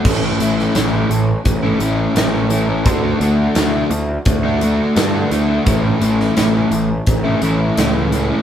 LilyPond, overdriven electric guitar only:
\new Staff \with { instrumentName = "Overdriven electric guitar" } { \time 4/4 \key a \major \tempo 4 = 85 <a, e a cis' e'>16 <a cis' e'>16 <e a cis' e'>8 <a, e a cis' e'>16 <a cis' e'>8. r16 <a cis' e'>16 <e a cis' e'>8 <a, e a cis' e'>16 <a cis' e'>16 <e a cis' e'>16 <a cis' e'>16 | <d a d' fis'>16 <a d' fis'>16 <d a d' fis'>8 <d a d' fis'>16 <a d' fis'>8. r16 <a d' fis'>16 <d a d' fis'>8 <d a d' fis'>16 <a d' fis'>16 <d a d' fis'>16 <a d' fis'>16 | <a, e a cis' e'>16 <a cis' e'>16 <e a cis' e'>8 <a, e a cis' e'>16 <a cis' e'>8. r16 <a cis' e'>16 <e a cis' e'>8 <a, e a cis' e'>16 <a cis' e'>16 <e a cis' e'>16 <a cis' e'>16 | }